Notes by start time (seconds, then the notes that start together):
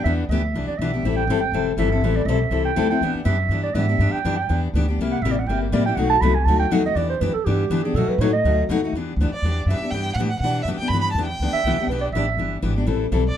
0.04 E2 E3 B3 D4 G4 E5
0.29 D2 E3 B3 D4 G4 E5
0.54 C2 E3 B3 D4 G4
0.67 D5, muted upright bass stroke
0.78 B1 E3 B3 D4 E5
0.82 G4
0.94 B3 D4 G4
1.03 A1 E3 G3 C4 E4 A4
1.16 G5
1.27 G1 E3 G3 C4 E4 A4
1.41 G5
1.52 E1 E3 G3 C4 E4 A4
1.77 G1 E3 G3 C4 E4 A4 E5
1.92 C4 E4 A4
2.01 A1 E3 G3 C4 E4 A4
2.16 D5
2.25 B1 E3 G3 C4 A4 E5
2.30 E4
2.51 C2 E3 G3 C4 E4 A4
2.65 G5
2.76 D2 E3 G3 C4 E4 A4
2.90 C4 E4 A4 G5
3.01 E2 E3 B3 D4 G4
3.14 muted upright bass stroke
3.25 F#2 E3 B3 D4 G4 E5
3.49 G2 E3 B3 D4 G4
3.63 D5
3.74 G#2 E3 B3 D4 G4 E5
3.89 B3 D4 G4
3.99 G2 E3 B3 D4 G4
4.12 G5, muted upright bass stroke
4.25 F#2 E3 B3 D4 G4
4.37 G5
4.49 E2 E3 B3 D4 G4
4.74 D2 E3 B3 D4 G4
4.88 B3 D4 G4
4.99 C2 C3 G3 A#3 E4 G4
5.12 F#5
5.22 A1 C3 G3 E4 E5
5.26 A#3 G4
5.31 D5
5.39 F#5
5.46 G1 C3 G3 A#3 E4 G4 G5
5.62 A#4
5.72 A1 C3 G3 A#3 E4 G4 D5
5.86 A#3 E4 G4 G5
5.96 B1 B2 F#3 A3 D#4 F#4 F#5
6.10 A5
6.21 C2 B2 F#3 A3 D#4 F#4 B5
6.34 G#5
6.45 D2 B2 F#3 A3 D#4 F#4 A5
6.59 G5
6.71 D#2 B2 F#3 A3 D#4 F#4 F#5
6.86 A3 D#5
6.95 E2 E3 B3 D4 G4 D5
7.09 C5
7.21 F#2 E3 B3 D4 G4 B4
7.34 A4, muted upright bass stroke
7.45 G2 E3 B3 D4 G4
7.70 D3 E3 B3 D4 G4
7.83 B3 D4 G4 G#4
7.94 B2 F#3 A3 D#4 F#4 A4
8.08 B4, muted upright bass stroke
8.18 A2 B2 F#3 A3 D#4 F#4 C#5
8.33 D#5
8.44 D2 B2 F#3 A3 D#4 F#4
8.69 D#2 B2 F#3 A3 D#4 F#4
8.84 A3 D#4 F#4
8.93 E2 E3 B3 D4 G4
9.16 D2
9.21 E3 B3 D4 G4
9.32 D5, muted upright bass stroke
9.42 E2 E3 B3 D4 G4
9.66 F#2 E5
9.70 E3 B3 D4 G4
9.80 D4 G4, muted upright bass stroke
9.84 B3
9.91 G2 E3 B3 D4 G4 G5
10.14 A2 F#5
10.19 E3 B3 D4 G4
10.29 F#5
10.40 B2 E3 B3 F#5
10.44 D4 G4
10.63 F#2 E5
10.68 E3 B3 D4 G4
10.78 B3 D4 G4 G5, muted upright bass stroke
10.88 G2 B5
10.93 E3 B3 D4 G4
11.01 B5
11.12 E2 A5
11.18 E3 B3 D4 G4
11.26 G5
11.40 D2 E3 B3 D4 G4
11.53 E5
11.64 C2 E3 B3 D4
11.68 G4
11.78 B3 D4 G4, muted upright bass stroke
11.87 B1 B4
11.91 E3 B3 D4 G4
12.01 D5
12.12 A1 E3 B3 D4 E5
12.17 G4
12.37 G1 E3 B3 D4 G4
12.62 G#1 E3 B3 D4 G4
12.76 B3 D4 G4
12.86 A1 E3 G3 C4 E4 A4
13.12 B1 E3 G3 C4 E4 A4
13.28 D5